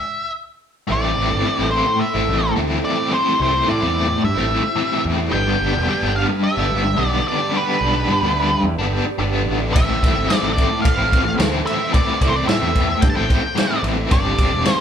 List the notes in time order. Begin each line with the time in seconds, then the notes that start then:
Already playing: E5
0.87 A1 A2 E3 A3 C4 E4 A4 C5
0.92 D5
1.15 A1 E3 A3 C4 E4
1.30 G1 A3 C4 E4
1.44 A2 E3 A3 C4 E4
1.59 A1
1.71 E3 A3 C4 C5
1.75 E4
1.87 muted overdriven electric guitar stroke
2.00 E5
2.14 A1 A3 C4 E4
2.28 A1 E3 A3 C4 E4
2.42 muted overdriven electric guitar stroke
2.56 D2 A2 E3 A3 C4 E4
2.85 D5
2.97 A3 C4 E4
3.10 A2 E3 A3 C4 E4 G4
3.14 C5
3.38 C2 E3 A3 C4 E4
3.42 C5
3.53 A3 C4 E4
3.66 A2 E3 A3 C4 E4
3.70 D5
3.82 E2
3.94 E3 A3 C4 E4
4.08 muted overdriven electric guitar stroke
4.24 G2 E5
4.35 A1 A3 C4 E4
4.48 E3 A3 C4 E4
4.63 muted overdriven electric guitar stroke
4.76 A2 E3 A3 C4 E4
5.05 E2
5.17 A3 C4 E4
5.30 G1 G2 D3 G3 B3 D4 D5 G5
5.35 B4
5.58 G1 D3 G3 B3 D4
5.73 E1 G3 B3 D4
5.87 G2 D3 G3 B3 D4
6.03 G1
6.16 D3 G3 B3 D4 F5
6.29 muted overdriven electric guitar stroke
6.44 E5
6.55 G1 G3 B3 D4
6.69 G1 D3 G3 B3 D4
6.84 muted overdriven electric guitar stroke
6.96 B1 G2 D3 G3 B3 D4
7.06 D5
7.28 D5
7.38 G3 B3 D4
7.51 G2 D3 G3 B3 D4
7.56 B4
7.80 B1 D3 G3 B3 D4
7.93 G3 B3 D4
8.08 G2 D3 G3 B3 D4
8.22 D2
8.36 D3 G3 B3 D4
8.51 muted overdriven electric guitar stroke
8.63 E2
8.77 G1 B3 D4
8.82 G3
8.91 D3 G3 B3 D4
9.06 muted overdriven electric guitar stroke
9.18 G1 G2 D3 G3 B3 D4
9.46 A1
9.60 G3 B3 D4
9.73 A1 A2 E3 A3 C4 E4 A4 C5 E5, kick, ride
10.02 A1 E3 A3 C4 E4, kick, ride
10.13 G1 C4 E4
10.18 A3
10.28 A2 E3 A3 C4 E4, snare, ride
10.35 D5
10.43 A1
10.53 E3 A3 C4 D5
10.58 E4, kick, ride
10.70 muted overdriven electric guitar stroke
10.82 F5, kick, ride
10.97 A1 A3 C4 E4
11.10 A1 E3 A3 C4 E4, kick, ride
11.25 muted overdriven electric guitar stroke
11.38 D2 A2 E3 A3 C4 E4, snare, ride
11.67 E5, ride
11.78 A3 C4 E4
11.92 A2 E3 A3 C4 E4 D5, kick, ride
12.19 C2 E3 A3 C4 E4, kick, ride
12.23 D5
12.28 C5
12.33 A3 C4 E4 D5
12.46 A2 E3 A3 C4 E4 E5, snare, ride
12.62 E2
12.73 E3 A3 C4 E4, kick, ride
12.88 muted overdriven electric guitar stroke
13.01 G2 G5, kick, ride
13.10 A5
13.14 A1 A3 C4 E4 G5
13.28 E3 A3 C4 E4, kick, ride
13.42 muted overdriven electric guitar stroke
13.55 A2 E3 A3 C4 E4, snare, ride
13.83 A1, ride
13.97 A3 C4 E4
14.11 G1 G2 D3 G3 C4 D4 G4 C5 D5, kick, ride
14.38 G1 D3 G3 C4 D4, kick, ride
14.51 E1 G3 C4 D4
14.65 G2 D3 G3 C4 D4, snare, ride
14.72 C5